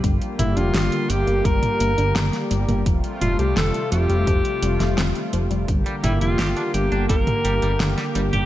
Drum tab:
HH |xxxxxxxxxxxxxxxx|xxxxxxxxxxxxxxxx|xxxxxxxxxxxxxxxx|
SD |----o-------oo--|----o------oo---|----o-------oo--|
T2 |--o------o-----o|--o-------------|--o------o-----o|
BD |o-------o-------|o-------o-------|o-------o-------|